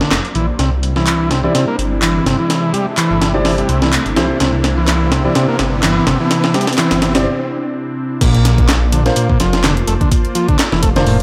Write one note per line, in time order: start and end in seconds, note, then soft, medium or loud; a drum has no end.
0.00 0.09 F1 soft
0.00 0.11 D3 medium
0.00 0.55 A#3 medium
0.00 0.55 C5 medium
0.00 0.55 D5 medium
0.00 0.55 F5 medium
0.00 snare medium
0.00 riser medium
0.11 0.20 F1 medium
0.11 snare loud
0.11 clap loud
0.11 closed hi-hat medium
0.25 closed hi-hat soft
0.35 0.51 A#1 medium
0.35 0.46 E3 medium
0.35 closed hi-hat medium
0.59 1.48 C2 loud
0.59 0.70 C3 medium
0.59 8.17 C3 medium
0.59 8.17 C4 medium
0.59 8.17 D4 medium
0.59 8.17 E4 medium
0.59 snare soft
0.59 closed hi-hat medium
0.83 closed hi-hat medium
0.96 1.30 E3 medium
0.96 snare soft
1.07 clap loud
1.07 closed hi-hat medium
1.31 1.41 C3 medium
1.31 snare medium
1.31 closed hi-hat medium
1.44 1.53 E3 medium
1.44 1.63 C4 medium
1.44 1.63 E4 medium
1.44 1.63 G4 medium
1.44 1.63 D5 medium
1.54 1.65 C3 medium
1.54 snare soft
1.54 closed hi-hat medium
1.68 1.76 A#3 loud
1.79 2.19 G1 loud
1.79 closed hi-hat medium
2.02 2.25 E3 loud
2.02 clap loud
2.02 closed hi-hat medium
2.26 2.34 G1 medium
2.26 2.37 C3 medium
2.26 snare medium
2.26 closed hi-hat medium
2.39 2.73 E3 medium
2.50 snare medium
2.50 closed hi-hat medium
2.73 2.86 G3 loud
2.73 closed hi-hat medium
2.97 3.20 E3 loud
2.97 clap loud
2.97 closed hi-hat medium
3.11 3.62 G1 loud
3.21 3.32 E3 medium
3.21 snare medium
3.21 closed hi-hat medium
3.34 3.53 C4 medium
3.34 3.53 E4 medium
3.34 3.53 G4 medium
3.34 3.53 D5 loud
3.45 3.56 E3 medium
3.45 snare medium
3.45 open hi-hat medium
3.58 3.68 G3 medium
3.58 closed hi-hat soft
3.69 3.98 C2 loud
3.69 3.81 C3 medium
3.69 closed hi-hat medium
3.82 3.92 E3 medium
3.82 snare medium
3.93 clap loud
3.93 closed hi-hat medium
4.06 4.18 G1 medium
4.06 closed hi-hat soft
4.16 4.32 C2 loud
4.16 4.27 E3 medium
4.16 4.36 C4 medium
4.16 4.36 E4 medium
4.16 4.36 G4 medium
4.16 4.36 C5 medium
4.16 snare medium
4.16 closed hi-hat medium
4.40 5.29 C2 loud
4.40 4.51 C3 medium
4.40 snare medium
4.40 closed hi-hat medium
4.64 snare medium
4.64 closed hi-hat medium
4.78 5.11 E3 medium
4.88 snare medium
4.88 clap loud
4.88 closed hi-hat medium
5.12 5.23 C3 medium
5.12 snare medium
5.12 closed hi-hat medium
5.24 5.35 E3 medium
5.24 5.44 C4 medium
5.24 5.44 E4 medium
5.24 5.44 G4 medium
5.24 5.44 D5 medium
5.35 5.46 C3 medium
5.35 snare medium
5.35 closed hi-hat medium
5.48 5.57 A#3 medium
5.59 6.00 G1 loud
5.59 snare medium
5.59 closed hi-hat medium
5.83 6.06 E3 loud
5.83 snare medium
5.83 clap loud
5.83 closed hi-hat medium
6.07 6.15 G1 medium
6.07 6.18 C3 medium
6.07 snare medium
6.07 closed hi-hat medium
6.20 6.54 E3 medium
6.31 snare medium
6.31 closed hi-hat medium
6.44 snare medium
6.54 6.67 G3 loud
6.54 snare medium
6.54 closed hi-hat medium
6.61 closed hi-hat medium
6.67 snare medium
6.67 closed hi-hat medium
6.73 closed hi-hat medium
6.78 7.01 E3 loud
6.78 snare loud
6.78 clap loud
6.78 closed hi-hat medium
6.91 7.26 G1 loud
6.91 snare medium
6.91 closed hi-hat medium
7.02 7.13 E3 medium
7.02 snare loud
7.02 closed hi-hat medium
7.15 7.26 C4 medium
7.15 7.26 E4 medium
7.15 7.26 G4 medium
7.15 7.26 D5 loud
7.15 snare medium
7.15 closed hi-hat medium
8.21 9.10 A#1 loud
8.21 8.68 A#2 medium
8.21 11.23 A#3 medium
8.21 11.23 F4 medium
8.21 11.23 C5 medium
8.21 11.23 D5 medium
8.21 kick loud
8.21 closed hi-hat medium
8.21 closed hi-hat soft
8.21 crash loud
8.35 closed hi-hat soft
8.45 snare medium
8.45 closed hi-hat medium
8.58 kick loud
8.58 closed hi-hat soft
8.69 snare loud
8.69 clap loud
8.69 closed hi-hat medium
8.69 closed hi-hat soft
8.92 9.04 D3 medium
8.92 closed hi-hat medium
9.06 9.25 A#3 medium
9.06 9.25 D4 medium
9.06 9.25 F4 medium
9.06 9.25 C5 medium
9.06 snare soft
9.06 closed hi-hat soft
9.16 9.28 A#2 medium
9.16 closed hi-hat soft
9.16 closed hi-hat medium
9.29 9.38 A#2 medium
9.29 kick loud
9.40 9.81 F1 loud
9.40 9.63 F3 medium
9.40 snare soft
9.40 closed hi-hat medium
9.53 snare medium
9.53 closed hi-hat soft
9.63 9.75 D3 medium
9.63 snare loud
9.63 clap loud
9.63 closed hi-hat soft
9.63 closed hi-hat medium
9.77 closed hi-hat soft
9.87 9.96 F1 medium
9.87 9.94 A3 medium
9.87 closed hi-hat medium
10.01 10.10 D3 medium
10.01 kick medium
10.01 closed hi-hat soft
10.12 kick loud
10.12 closed hi-hat soft
10.12 closed hi-hat medium
10.25 closed hi-hat soft
10.35 10.47 F3 medium
10.35 closed hi-hat medium
10.48 10.57 D3 loud
10.48 kick medium
10.48 closed hi-hat soft
10.59 snare loud
10.59 clap loud
10.59 closed hi-hat soft
10.59 closed hi-hat medium
10.72 11.23 F1 loud
10.72 10.82 E3 medium
10.72 snare medium
10.83 10.89 A3 medium
10.83 kick loud
10.83 closed hi-hat medium
10.96 11.05 D3 medium
10.96 11.15 A#3 medium
10.96 11.15 D4 medium
10.96 11.15 F4 medium
10.96 11.15 C5 loud
10.96 snare medium
10.96 closed hi-hat soft
11.07 11.18 A2 loud
11.07 closed hi-hat soft
11.07 open hi-hat medium